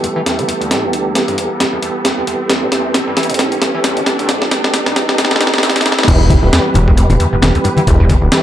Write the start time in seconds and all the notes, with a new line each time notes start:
Already playing: E3 G3 B3 G4 A4, riser
0.03 E2, closed hi-hat
0.16 E3
0.26 E2, snare, closed hi-hat
0.38 E3, closed hi-hat
0.48 E2, closed hi-hat
0.61 D2, closed hi-hat
0.70 A2, snare, closed hi-hat
0.83 E2
0.93 D2, closed hi-hat
1.15 E2, snare, closed hi-hat
1.28 G2, closed hi-hat
1.38 E2, closed hi-hat
1.60 E2, snare, closed hi-hat
1.73 E2
1.82 E2, closed hi-hat
2.05 E2, snare, closed hi-hat
2.18 E2
2.27 E2, closed hi-hat
2.50 E2, snare, closed hi-hat
2.63 A2
2.72 E2, snare, closed hi-hat
2.94 G2, snare, closed hi-hat
3.07 G2
3.17 E3, snare, closed hi-hat
3.23 closed hi-hat
3.30 E2, closed hi-hat
3.34 closed hi-hat
3.39 A2, snare, closed hi-hat
3.52 G2, closed hi-hat
3.62 E2, snare, closed hi-hat
3.75 E3
3.84 E2, snare, closed hi-hat
3.97 E3, closed hi-hat
4.06 E2, snare, closed hi-hat
4.19 D2, closed hi-hat
4.29 A2, snare, closed hi-hat
4.41 E2, snare
4.51 D2, snare, closed hi-hat
4.64 snare
4.73 E2, snare, closed hi-hat
4.86 G2, snare, closed hi-hat
4.96 E2, snare, closed hi-hat
5.09 snare
5.18 E2, snare, closed hi-hat
5.25 snare
5.31 E2, snare
5.36 snare
5.41 E2, snare, closed hi-hat
5.47 snare
5.54 snare
5.58 snare
5.63 E2, snare, closed hi-hat
5.70 snare, closed hi-hat
5.76 E2, snare, closed hi-hat
5.81 snare, closed hi-hat
5.85 E2, snare, closed hi-hat
5.92 snare
5.99 snare
6.03 snare
6.07 E1 E2 E3 G3 B3 G4 B4, kick, closed hi-hat, crash
6.30 G2, kick, closed hi-hat, high conga
6.43 D1
6.52 E2, snare, closed hi-hat
6.74 E1 G2, closed hi-hat, high bongo, high conga
6.88 G2, kick
6.97 E2, closed hi-hat
7.10 E1 E2, closed hi-hat, high bongo, high conga, low conga
7.20 E2, closed hi-hat
7.32 E1 A2
7.42 E1 E3, snare, closed hi-hat, high conga
7.55 D2, closed hi-hat
7.64 G2, closed hi-hat, high bongo
7.77 E3, closed hi-hat, high conga
7.87 E1 E2, kick, closed hi-hat
8.00 E2
8.09 E2, kick, closed hi-hat, high conga
8.22 D1
8.32 E3, snare, closed hi-hat